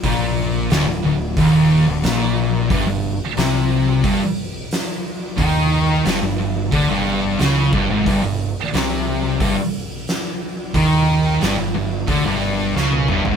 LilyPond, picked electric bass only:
\new Staff \with { instrumentName = "Picked electric bass" } { \clef bass \time 4/4 \key g \dorian \tempo 4 = 90 bes,,4 d,,16 d,,16 d,,8 ees,,8. d,,16 bes,,4 | g,,16 g,,8 r16 c,4 g,,16 r4. r16 | ees,4 g,,16 g,,16 g,,8 d,16 g,,8. cis,8 g,,16 gis,,16 | g,,16 g,,8 r16 c,4 g,,16 r4. r16 |
ees,4 g,,16 g,,16 g,,8 d,16 g,,8. cis,8 g,,16 gis,,16 | }